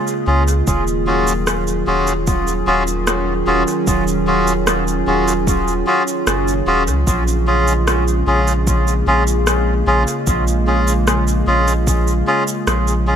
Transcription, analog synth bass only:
0.27 0.63 C#2 medium
0.67 1.84 D#1 loud
1.88 2.64 D#1 medium
2.67 3.43 D#1 medium
3.47 3.65 D#1 loud
3.87 5.04 D#1 loud
5.08 5.84 D#1 medium
6.27 6.62 F#1 medium
6.67 6.89 D#1 medium
6.87 7.05 C#2 medium
7.07 8.23 A#1 loud
8.27 9.03 A#1 medium
9.07 9.83 A#1 medium
9.87 10.05 A#1 loud
10.27 11.43 A#1 loud
11.47 12.23 A#1 medium
12.67 13.16 A#1 loud

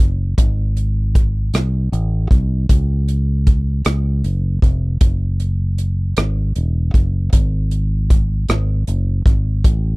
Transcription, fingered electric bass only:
0.00 0.35 F#1 medium
0.38 1.50 G#1 medium
1.54 1.89 C2 medium
1.92 2.28 A1 medium
2.31 2.66 C2 medium
2.70 3.81 C#2 medium
3.86 4.21 C#2 medium
4.24 4.60 F#1 medium
4.62 4.98 F1 medium
5.01 6.13 F#1 medium
6.17 6.53 G#1 medium
6.56 6.91 E1 medium
6.94 7.30 F#1 medium
7.33 8.45 G#1 medium
8.49 8.85 G#1 medium
8.88 9.23 F#1 medium
9.26 9.61 G#1 medium
9.64 9.96 A1 medium

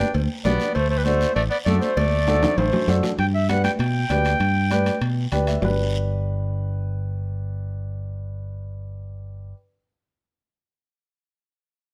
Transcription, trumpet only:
0.00 0.13 D4 medium
0.45 0.73 B3 medium
0.75 0.89 A3 medium
0.90 0.99 A3 medium
0.98 1.06 G3 medium
1.04 1.34 A3 medium
1.35 1.42 A3 medium
1.50 1.57 B3 medium
1.65 1.79 A3 medium
1.77 1.96 A3 medium
1.77 1.82 B3 medium
1.96 2.57 A3 medium
2.57 3.03 A3 medium

